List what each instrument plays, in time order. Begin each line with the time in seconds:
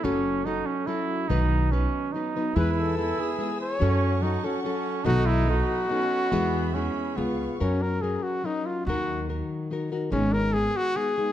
0.04 upright bass F#1, nylon-string guitar F#3 C#4 F#4 A4, trumpet C#4
0.45 nylon-string guitar F#3 C#4 F#4 A4, trumpet D#4
0.66 trumpet C#4
0.87 nylon-string guitar F#3 C#4 F#4 A4, trumpet E4
1.28 upright bass B1, nylon-string guitar B2 D#3 F#3 B3 D#4 B4, trumpet D#4
1.71 nylon-string guitar F#3 B3 D#4 B4, trumpet C#4
2.12 nylon-string guitar F#3 B3 D#4 B4, trumpet D#4
2.36 nylon-string guitar F#3 B3 D#4 B4
2.55 upright bass E2, nylon-string guitar E3 G#3 B3 E4 G#4, trumpet E4 B4, violin section B4 G#5 E6
2.73 trumpet B4
2.79 trumpet A4
2.97 nylon-string guitar G#3 B3 E4 G#4, trumpet E4
3.19 nylon-string guitar B3 E4 G#4, trumpet G#4
3.39 nylon-string guitar G#3 B3 E4 G#4
3.61 trumpet C#5
3.80 upright bass F#2, nylon-string guitar F#3 C#4 F#4 A4, trumpet C#4, violin section A4 F#5 C#6
4.22 nylon-string guitar F#3 C#4 F#4 A4, trumpet D#4
4.44 trumpet C#4, nylon-string guitar C#4 F#4 A4
4.63 nylon-string guitar F#3 C#4 F#4 A4, trumpet C#4
5.04 upright bass B1, nylon-string guitar B2 D#3 F#3 B3 D#4 A4, trumpet D#4 F#4, violin section D#5 B5
5.26 trumpet E4
5.47 nylon-string guitar F#3 B3 D#4 A4, trumpet F#4
5.84 trumpet D#4
5.89 nylon-string guitar F#3 B3 D#4 A4, trumpet C#4
6.31 upright bass E2, nylon-string guitar E3 G#3 B3 E4 G#4, trumpet B3, violin section G#4 E5
6.74 nylon-string guitar G#3 B3 E4 G#4, trumpet C#4
7.16 upright bass C#2, nylon-string guitar G#3 B3 F4 G#4, trumpet B3, violin section B4 F5 C#6
7.60 upright bass F#2, nylon-string guitar F#3 C#4 F#4 A#4, trumpet C#4
7.82 trumpet A#4
8.01 nylon-string guitar F#3 C#4 F#4 A#4, trumpet G#4
8.23 trumpet F#4
8.44 nylon-string guitar F#3 C#4 F#4 A#4, trumpet D#4
8.66 trumpet F4
8.86 upright bass D#2, nylon-string guitar D#3 F#3 D#4 F#4 A#4, trumpet F#4
9.29 nylon-string guitar F#3 D#4 F#4 A#4
9.70 nylon-string guitar F#3 D#4 F#4 A#4
9.92 nylon-string guitar D#4 F#4 A#4
10.11 upright bass G#1, nylon-string guitar G#2 D#3 G#3 B3 D#4 G#4, trumpet C#4
10.33 trumpet A#4
10.53 nylon-string guitar G#3 B3 D#4 G#4, trumpet G#4
10.77 trumpet F#4
10.96 nylon-string guitar G#3 B3 D#4 G#4, trumpet G#4
11.18 nylon-string guitar G#3 B3 D#4 G#4